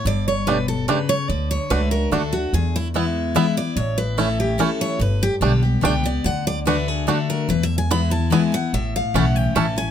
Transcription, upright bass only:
\new Staff \with { instrumentName = "Upright bass" } { \clef bass \time 3/4 \key a \mixolydian \tempo 4 = 145 g,,2. | d,4 cis,4 d,4 | e,2. | a,,2. |
g,,4 b,,4 cis,4 | d,2. | e,2. | a,,4 b,,4 a,,4 | }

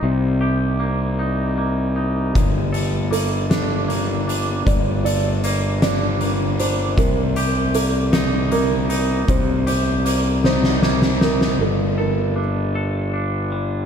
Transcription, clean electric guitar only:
\new Staff \with { instrumentName = "Clean electric guitar" } { \time 6/8 \key g \minor \tempo 4. = 52 <c bes ees'>8 g'8 bes8 ees'8 bes8 ees'8 | g,8 a'8 bes8 d'8 bes8 d'8 | g,8 a'8 bes8 d'8 bes8 d'8 | c8 g'8 bes8 ees'8 bes8 ees'8 |
c8 g'8 bes8 ees'8 bes8 ees'8 | g,8 a'8 d'8 a'8 d'8 g8 | }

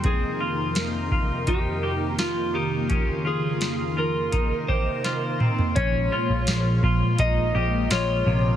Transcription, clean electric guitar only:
\new Staff \with { instrumentName = "Clean electric guitar" } { \time 4/4 \key bes \dorian \tempo 4 = 84 c'8 f'4 f'8 ees'8 g'8 f'8 ees'8 | des'8 f'4 f'8 ees'8 g'8 f'8 c'8 | des'8 f'4 f'8 ees'8 g'8 f'8 c8 | }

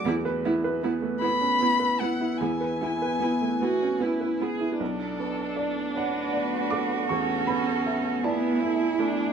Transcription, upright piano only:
\new Staff \with { instrumentName = "Upright piano" } { \time 6/8 \key e \mixolydian \tempo 4. = 52 << { r2. | r2. | r4. fis''4 d'''8 | cis'''8 b''4 a''4. | } \\ { e,16 b'16 e'16 b'16 b16 a16 b16 cis'16 b16 b'16 b16 e'16 | e,16 b'16 e'16 b'16 b16 a16 b16 cis'16 b16 b'16 b16 e'16 | b,,8 b8 d''8 cis''8 d''8 a'8 | e,8 b8 e''8 d''8 e''8 a8 | } >> }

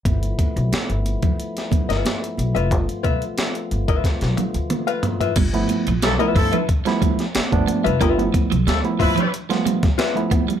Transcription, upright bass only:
\new Staff \with { instrumentName = "Upright bass" } { \clef bass \time 4/4 \key g \mixolydian \tempo 4 = 91 g,,8 r16 b,,16 r16 g,,8 r4 g,,16 r8 b,,16 f,,16 | g,,16 r16 b,,16 r8. g,,8 r16 b,,16 r16 d,16 r4 | g,,8 r16 bes,,16 b,,16 r16 g,16 r4. g,,16 r16 f,,16 | g,,8 r16 b,,16 d,16 r16 g,16 r2 r16 | }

